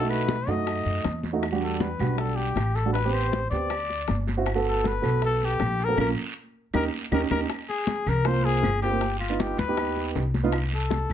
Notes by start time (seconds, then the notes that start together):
Already playing: B1 A4
0.00 A3 D#4 F#4
0.09 B4, high bongo, high conga, claves
0.28 high bongo, high conga, short guiro
0.47 F#2 A3 D#4 F#4 D#5, high conga, short guiro
0.67 high bongo, high conga, long guiro, claves
0.85 F#2, high bongo, high conga
1.04 E2, high bongo, low bongo, high conga, short guiro
1.23 high bongo, high conga, short guiro
1.33 A3 D#4 F#4
1.43 high bongo, high conga, long guiro, claves
1.52 G3 D4 F#4
1.62 A4, high bongo, high conga
1.80 B4, high bongo, high conga, short guiro
1.99 B1 G3 D4 F#4, high bongo, high conga, short guiro, claves
2.18 A4, high bongo, high conga, long guiro
2.36 G4, high conga
2.56 A1, high bongo, low bongo, high conga, short guiro, claves
2.75 A4, high bongo, short guiro
2.85 G3 D4 F#4
2.93 B4, high bongo, high conga, long guiro
3.05 B3 C4 G4
3.13 C5, high bongo, high conga, claves
3.32 high bongo, high conga, short guiro
3.50 D2 B3 C4 G4 D5, high conga, short guiro
3.70 high bongo, high conga, long guiro, claves
3.89 high bongo, high conga
4.08 G1, high bongo, low bongo, high conga, short guiro
4.27 high bongo, high conga, short guiro
4.37 C4 E4 F#4
4.46 high bongo, high conga, long guiro, claves
4.55 B3 F#4 A4
4.65 A4, high bongo, high conga
4.84 B4, high bongo, high conga, short guiro
5.02 B1 B3 F#4 A4, high bongo, high conga, short guiro, claves
5.22 A4, high bongo, high conga, long guiro
5.43 G4, high conga
5.60 A#1, high bongo, low bongo, high conga, short guiro, claves
5.79 high bongo, short guiro
5.84 A#4
5.88 B3 F#4 A4
5.97 A#1 A#3 C#4 F4 A#4, low bongo, high conga, long guiro, claves
6.73 D#2 C#4 D#4 G4 A#4, low bongo, high conga, long guiro, claves
7.11 D#2 C#4 D#4 G4 A#4, low bongo, high conga, long guiro, claves
7.30 D#2 C#4 D#4 G4 A#4, low bongo, high conga, long guiro, claves
7.50 high bongo, high conga, long guiro, claves
7.69 G#4, high conga
7.87 high bongo, high conga, short guiro
8.06 C2 A#4, high bongo, high conga, low conga, short guiro, claves
8.25 A#3 C4 F4 C5, high bongo, high conga, long guiro
8.44 G#4, high bongo, high conga
8.63 G1, high bongo, low bongo, high conga, short guiro, claves
8.82 A#3 C4 F4 G4, high bongo, high conga, short guiro
8.91 A#3 C4 F4
9.01 high bongo, high conga, long guiro
9.19 F4, high conga, claves
9.29 B3 D#4 F4
9.40 G4, high bongo, high conga, short guiro
9.58 D#2 B4, high bongo, high conga, short guiro
9.68 B3 D#4 G4
9.77 high bongo, high conga, long guiro, claves
9.96 high bongo, high conga
10.15 C2, high bongo, low bongo, high conga, short guiro
10.34 high bongo, high conga, short guiro
10.43 B3 D#4 F4
10.52 high bongo, high conga, long guiro, claves
10.73 A4, high conga
10.90 high bongo, high conga, short guiro
11.10 G2, high bongo, short guiro